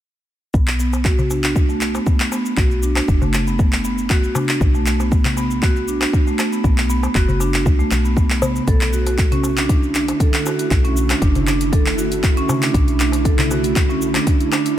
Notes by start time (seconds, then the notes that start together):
0.54 B1 B3, kick, shaker
0.68 clap, shaker
0.79 B3, shaker
0.93 darbuka ka, shaker
1.05 F#4, kick, clap, shaker
1.19 darbuka dum, shaker
1.30 D4, darbuka tek, shaker
1.44 D4, clap, shaker
1.56 kick, shaker
1.69 A3, shaker
1.81 clap, shaker
1.95 B3, darbuka ka, shaker
2.06 kick, shaker
2.20 clap, shaker
2.32 B3, darbuka tek, shaker
2.46 shaker
2.57 B1 F#4, kick, clap, shaker
2.71 shaker
2.83 D4, shaker
2.96 D4, clap, darbuka ka, darbuka tek, shaker
3.08 F#1, kick, shaker
3.22 A3, darbuka dum, shaker
3.34 clap, darbuka tek, shaker
3.47 B3, shaker
3.59 kick, shaker
3.73 clap, shaker
3.85 B3, shaker
3.98 shaker
4.10 F#4, kick, clap, shaker
4.24 shaker
4.35 D4, darbuka tek, darbuka dum, shaker
4.49 D4, clap, shaker
4.61 B1, kick, shaker
4.74 A3, shaker
4.86 clap, shaker
5.00 B3, darbuka ka, shaker
5.12 B3, kick, shaker
5.25 clap, darbuka dum, shaker
5.37 B3, darbuka tek, shaker
5.51 shaker
5.63 F#4, kick, clap, shaker
5.76 shaker
5.88 D4, shaker
6.01 D4, clap, darbuka ka, shaker
6.13 kick, shaker
6.27 A3, shaker
6.39 clap, darbuka tek, shaker
6.52 B3, shaker
6.64 B1 B3, kick, shaker
6.78 clap, shaker
6.90 B3, shaker
7.03 darbuka ka, darbuka tek, shaker
7.15 F#1 F#4, kick, clap, shaker
7.28 darbuka dum, shaker
7.40 D4, darbuka tek, shaker
7.54 D4, clap, shaker
7.66 C#2, kick, shaker
7.79 A3, shaker
7.91 B1, clap, shaker
8.05 B3, shaker
8.17 kick, shaker
8.30 clap, shaker
8.42 B3, darbuka tek, darbuka dum, shaker
8.56 shaker
8.67 B1 D3 A3 E4 A4, kick, closed hi-hat, shaker
8.81 clap, closed hi-hat, shaker
8.93 F#4, shaker
9.07 F#4, closed hi-hat, darbuka ka, shaker
9.18 kick, clap, closed hi-hat, shaker
9.32 C#4, closed hi-hat, darbuka dum, shaker
9.43 darbuka tek, shaker
9.57 D4, clap, closed hi-hat, shaker
9.69 D4, kick, closed hi-hat, shaker
9.83 shaker
9.95 D4, clap, shaker
10.08 closed hi-hat, darbuka ka, shaker
10.20 A4, kick, closed hi-hat, shaker
10.34 clap, closed hi-hat, shaker
10.45 F#4, darbuka tek, shaker
10.59 F#4, closed hi-hat, shaker
10.71 B1, kick, clap, closed hi-hat, shaker
10.84 C#4, closed hi-hat, shaker
10.97 shaker
11.10 D4, clap, closed hi-hat, darbuka ka, darbuka tek, shaker
11.22 F#1 D4, kick, closed hi-hat, shaker
11.35 closed hi-hat, darbuka dum, shaker
11.47 D4, clap, darbuka tek, shaker
11.61 closed hi-hat, shaker
11.72 A4, kick, closed hi-hat, shaker
11.86 clap, shaker
11.98 F#4, shaker
12.12 F#4, closed hi-hat, shaker
12.23 kick, clap, closed hi-hat, shaker
12.37 C#4, closed hi-hat, shaker
12.49 darbuka tek, darbuka dum, shaker
12.62 D4, clap, closed hi-hat, shaker
12.74 B1 D4, kick, closed hi-hat, shaker
12.88 closed hi-hat, shaker
13.00 D4, clap, shaker
13.12 closed hi-hat, darbuka ka, shaker
13.25 A4, kick, closed hi-hat, shaker
13.38 clap, closed hi-hat, darbuka dum, shaker
13.51 F#4, darbuka tek, shaker
13.64 F#4, closed hi-hat, shaker
13.76 kick, clap, closed hi-hat, shaker
13.90 C#4, shaker
14.02 shaker
14.14 D4, clap, closed hi-hat, darbuka ka, shaker
14.27 D4, kick, closed hi-hat, shaker
14.40 closed hi-hat, shaker
14.52 D4, clap, darbuka tek, shaker
14.66 closed hi-hat, shaker